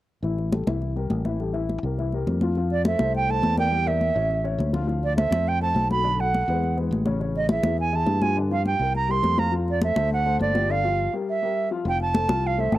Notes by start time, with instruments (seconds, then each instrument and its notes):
0.23 fingered electric bass A1, grand piano E3 E4 E5, high conga
0.38 high conga
0.52 grand piano G3 G4 A4, high conga
0.67 fingered electric bass C2, grand piano E3 E4 E5, high conga
0.82 high conga
0.96 grand piano G3 G4 A#4, high conga
1.10 fingered electric bass A1, high conga
1.25 grand piano E3 E4 E5, high conga
1.40 grand piano G3 G4 A4, high conga
1.53 grand piano E3 E4 E5, high conga
1.69 high conga
1.83 fingered electric bass C2, grand piano G3 G4 A#4
1.98 grand piano E3 E4 E5, high conga
2.12 grand piano G3 G4 A#4, high conga
2.27 fingered electric bass F2, high conga
2.41 grand piano F3 F4 F5, high conga
2.55 grand piano F3 F4 F5, high conga
2.70 flute D5, high conga
2.85 grand piano A3 A4 C5, flute E5, high conga
2.99 fingered electric bass C2, grand piano A3 A4 C5, high conga
3.15 flute G5, high conga
3.29 grand piano A3 A4 C5, flute A5, high conga
3.42 fingered electric bass E2, high conga
3.57 grand piano A#3 A#4 D5, flute G5, high conga
3.71 grand piano G3 G4 G5, high conga
3.86 grand piano A#3 A#4 D5, flute E5, high conga
4.01 high conga
4.15 fingered electric bass A1, grand piano C#4 C#5 E5
4.30 high conga
4.44 grand piano C#4 C#5 E5, high conga
4.58 fingered electric bass D2, high conga
4.73 grand piano F3 F4 F5, high conga
4.87 grand piano F3 F4 F5, high conga
5.03 flute D5, high conga
5.17 grand piano A3 A4 C5, flute E5, high conga
5.31 fingered electric bass F2, grand piano A3 A4 C5, high conga
5.47 flute G5, high conga
5.61 grand piano A3 A4 C5, flute A5, high conga
5.75 fingered electric bass B1, high conga
5.90 grand piano F#3 F#4 A4, flute B5, high conga
6.04 grand piano D3 D4 D5, high conga
6.19 grand piano F#3 F#4 A4, flute F#5, high conga
6.34 high conga
6.48 fingered electric bass E2, grand piano G#3 G#4 B4
6.63 high conga
6.77 grand piano G#3 G#4 B4, high conga
6.91 fingered electric bass A1, high conga
7.06 grand piano C#3 C#4 C#5, high conga
7.20 grand piano C#3 C#4 C#5, high conga
7.35 flute D#5, high conga
7.49 grand piano E3 E4 G#4, flute E5, high conga
7.63 fingered electric bass E2, grand piano E3 E4 G#4, high conga
7.78 flute G#5, high conga
7.92 grand piano E3 E4 G#4, flute A5, high conga
8.06 fingered electric bass G2, high conga
8.22 grand piano F3 F4 G4, flute G#5, high conga
8.36 grand piano D3 D4 D5, high conga
8.51 grand piano F3 F4 G4, flute F5, high conga
8.65 flute G5, high conga
8.79 fingered electric bass C2, grand piano G3 G4 A#4
8.95 flute A#5, high conga
9.08 grand piano G3 G4 A#4, flute C6, high conga
9.23 fingered electric bass F2, high conga
9.38 grand piano F3 F4 F5, flute A#5, high conga
9.52 grand piano F3 F4 F5, high conga
9.68 flute D5, high conga
9.81 grand piano A3 A4 C5, flute E5, high conga
9.96 fingered electric bass D2, grand piano A3 A4 C5, high conga
10.11 flute F#5, high conga
10.25 grand piano A3 A4 C5, high conga
10.39 fingered electric bass G1, flute D5, high conga
10.54 grand piano F3 F4 G4, high conga
10.69 grand piano D3 D4 D5, flute F5
10.84 grand piano F3 F4 G4
11.13 grand piano G3 G4 A#4
11.29 flute E5
11.42 grand piano G3 G4 A#4
11.71 grand piano F3 F4 F5
11.85 fingered electric bass F1, grand piano F3 F4 F5, flute G5, high conga
12.00 flute A5, high conga
12.14 grand piano A3 A4 C5, high conga
12.28 fingered electric bass C2, grand piano F3 F4 F5, high conga
12.44 flute F5, high conga
12.58 grand piano A3 A4 C5, flute E5, high conga
12.72 fingered electric bass A1, flute A5, high conga